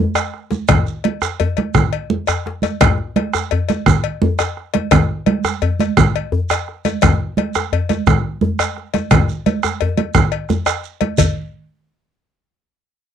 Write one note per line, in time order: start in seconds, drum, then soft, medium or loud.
0.15 bombo rim medium
0.15 cowbell medium
0.15 djembe tone medium
0.15 shekere soft
0.34 bombo rim soft
0.34 djembe slap soft
0.51 djembe slap medium
0.51 high conga medium
0.51 shekere soft
0.68 bombo rim loud
0.68 bombo low loud
0.68 cowbell medium
0.68 djembe tone medium
0.68 djembe bass medium
0.68 low conga medium
0.68 shekere medium
0.87 djembe slap soft
0.87 shekere soft
1.04 cowbell medium
1.04 high conga medium
1.22 bombo rim medium
1.22 djembe tone medium
1.22 shekere soft
1.40 cowbell medium
1.40 high conga soft
1.40 djembe bass medium
1.57 cowbell soft
1.57 djembe slap medium
1.57 high conga medium
1.75 bombo rim loud
1.75 bombo low loud
1.75 djembe slap soft
1.75 djembe tone medium
1.75 low conga medium
1.75 shekere medium
1.93 cowbell medium
2.10 high conga medium
2.10 djembe bass soft
2.27 bombo rim medium
2.27 cowbell medium
2.27 djembe bass medium
2.27 shekere soft
2.46 bombo rim soft
2.46 djembe slap medium
2.46 high conga soft
2.62 cowbell medium
2.62 djembe slap medium
2.62 high conga medium
2.62 shekere soft
2.81 bombo rim loud
2.81 bombo low loud
2.81 cowbell medium
2.81 djembe tone medium
2.81 low conga medium
2.81 djembe bass medium
2.81 shekere medium
2.98 high conga soft
3.16 bombo rim soft
3.16 cowbell medium
3.16 high conga medium
3.33 bombo rim medium
3.33 djembe tone medium
3.33 shekere soft
3.51 cowbell medium
3.51 djembe slap soft
3.51 djembe bass medium
3.69 cowbell medium
3.69 djembe slap medium
3.69 high conga medium
3.69 shekere soft
3.86 bombo rim loud
3.86 bombo low medium
3.86 djembe tone medium
3.86 low conga medium
3.86 shekere medium
4.04 cowbell medium
4.22 high conga medium
4.22 djembe bass medium
4.39 bombo rim medium
4.39 cowbell medium
4.39 djembe tone medium
4.39 shekere soft
4.57 bombo rim soft
4.57 djembe slap soft
4.74 cowbell medium
4.74 djembe slap medium
4.74 high conga medium
4.91 bombo rim loud
4.91 bombo low loud
4.91 cowbell medium
4.91 djembe tone medium
4.91 djembe bass medium
4.91 low conga medium
4.91 shekere medium
5.11 high conga soft
5.26 bombo rim soft
5.26 cowbell medium
5.26 high conga medium
5.45 bombo rim medium
5.45 djembe tone medium
5.45 shekere soft
5.62 cowbell medium
5.62 djembe slap soft
5.62 djembe bass medium
5.80 cowbell medium
5.80 djembe slap medium
5.80 high conga medium
5.80 shekere soft
5.97 bombo rim loud
5.97 bombo low loud
5.97 djembe tone medium
5.97 low conga medium
5.97 shekere medium
6.16 cowbell medium
6.32 djembe bass medium
6.50 bombo rim medium
6.50 cowbell medium
6.50 djembe tone medium
6.50 shekere medium
6.68 bombo rim soft
6.68 djembe slap soft
6.85 cowbell medium
6.85 djembe slap medium
6.85 high conga medium
6.85 shekere soft
7.02 bombo rim loud
7.02 bombo low loud
7.02 cowbell medium
7.02 djembe tone medium
7.02 low conga medium
7.02 djembe bass medium
7.02 shekere medium
7.20 high conga soft
7.37 bombo rim soft
7.37 cowbell soft
7.37 high conga medium
7.54 bombo rim medium
7.54 djembe tone medium
7.54 shekere medium
7.73 cowbell medium
7.73 djembe slap soft
7.73 djembe bass medium
7.89 cowbell medium
7.89 djembe slap medium
7.89 high conga medium
7.89 shekere soft
8.07 bombo rim loud
8.07 bombo low loud
8.07 djembe tone medium
8.07 low conga medium
8.07 shekere medium
8.41 high conga medium
8.41 djembe bass medium
8.59 bombo rim medium
8.59 cowbell medium
8.59 djembe tone medium
8.59 shekere soft
8.76 bombo rim soft
8.76 djembe slap soft
8.94 cowbell medium
8.94 djembe slap medium
8.94 high conga medium
8.94 shekere soft
9.11 bombo rim loud
9.11 bombo low loud
9.11 cowbell medium
9.11 djembe slap soft
9.11 djembe tone medium
9.11 djembe bass medium
9.11 low conga medium
9.11 shekere medium
9.29 high conga soft
9.29 shekere soft
9.46 cowbell medium
9.46 djembe slap soft
9.46 high conga medium
9.46 shekere soft
9.63 bombo rim medium
9.63 djembe tone medium
9.63 shekere soft
9.81 cowbell medium
9.81 djembe bass medium
9.97 cowbell soft
9.97 djembe slap medium
9.97 high conga medium
10.15 bombo rim loud
10.15 bombo low loud
10.15 djembe slap soft
10.15 djembe tone medium
10.15 low conga medium
10.15 shekere medium
10.32 cowbell medium
10.49 bombo rim soft
10.49 high conga medium
10.49 djembe bass medium
10.49 shekere soft
10.66 bombo rim medium
10.66 cowbell medium
10.66 djembe tone medium
10.66 shekere medium
10.84 shekere soft
11.01 cowbell medium
11.01 djembe slap medium
11.01 high conga medium
11.18 bombo low medium
11.18 cowbell medium
11.18 low conga medium
11.18 djembe bass medium
11.18 shekere medium